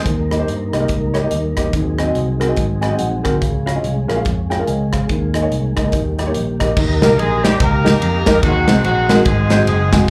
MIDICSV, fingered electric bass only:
0, 0, Header, 1, 2, 480
1, 0, Start_track
1, 0, Tempo, 419580
1, 62, Time_signature, 4, 2, 24, 8
1, 7261, Tempo, 414365
1, 11608, End_track
2, 0, Start_track
2, 0, Title_t, "Fingered electric bass"
2, 0, Program_c, 0, 33
2, 66, Note_on_c, 0, 39, 87
2, 472, Note_off_c, 0, 39, 0
2, 544, Note_on_c, 0, 43, 82
2, 790, Note_off_c, 0, 43, 0
2, 831, Note_on_c, 0, 36, 77
2, 993, Note_off_c, 0, 36, 0
2, 1021, Note_on_c, 0, 37, 69
2, 1430, Note_off_c, 0, 37, 0
2, 1499, Note_on_c, 0, 39, 81
2, 1748, Note_off_c, 0, 39, 0
2, 1800, Note_on_c, 0, 40, 80
2, 1958, Note_off_c, 0, 40, 0
2, 1984, Note_on_c, 0, 39, 87
2, 2393, Note_off_c, 0, 39, 0
2, 2466, Note_on_c, 0, 36, 87
2, 2875, Note_off_c, 0, 36, 0
2, 2944, Note_on_c, 0, 32, 85
2, 3354, Note_off_c, 0, 32, 0
2, 3427, Note_on_c, 0, 34, 75
2, 3675, Note_off_c, 0, 34, 0
2, 3721, Note_on_c, 0, 38, 77
2, 3881, Note_off_c, 0, 38, 0
2, 3907, Note_on_c, 0, 37, 84
2, 4316, Note_off_c, 0, 37, 0
2, 4397, Note_on_c, 0, 36, 81
2, 4641, Note_off_c, 0, 36, 0
2, 4684, Note_on_c, 0, 34, 76
2, 4843, Note_off_c, 0, 34, 0
2, 4871, Note_on_c, 0, 41, 74
2, 5278, Note_off_c, 0, 41, 0
2, 5352, Note_on_c, 0, 37, 84
2, 5758, Note_off_c, 0, 37, 0
2, 5827, Note_on_c, 0, 39, 89
2, 6235, Note_off_c, 0, 39, 0
2, 6305, Note_on_c, 0, 36, 89
2, 6552, Note_off_c, 0, 36, 0
2, 6606, Note_on_c, 0, 37, 75
2, 6763, Note_off_c, 0, 37, 0
2, 6784, Note_on_c, 0, 39, 81
2, 7191, Note_off_c, 0, 39, 0
2, 7270, Note_on_c, 0, 34, 77
2, 7677, Note_off_c, 0, 34, 0
2, 7748, Note_on_c, 0, 39, 101
2, 8049, Note_off_c, 0, 39, 0
2, 8049, Note_on_c, 0, 36, 90
2, 8205, Note_off_c, 0, 36, 0
2, 8246, Note_on_c, 0, 34, 98
2, 8646, Note_off_c, 0, 34, 0
2, 8712, Note_on_c, 0, 37, 97
2, 9118, Note_off_c, 0, 37, 0
2, 9201, Note_on_c, 0, 41, 97
2, 9442, Note_off_c, 0, 41, 0
2, 9492, Note_on_c, 0, 40, 89
2, 9647, Note_off_c, 0, 40, 0
2, 9676, Note_on_c, 0, 39, 101
2, 9919, Note_off_c, 0, 39, 0
2, 9965, Note_on_c, 0, 36, 98
2, 10122, Note_off_c, 0, 36, 0
2, 10154, Note_on_c, 0, 34, 96
2, 10558, Note_off_c, 0, 34, 0
2, 10633, Note_on_c, 0, 32, 103
2, 11037, Note_off_c, 0, 32, 0
2, 11110, Note_on_c, 0, 30, 96
2, 11515, Note_off_c, 0, 30, 0
2, 11608, End_track
0, 0, End_of_file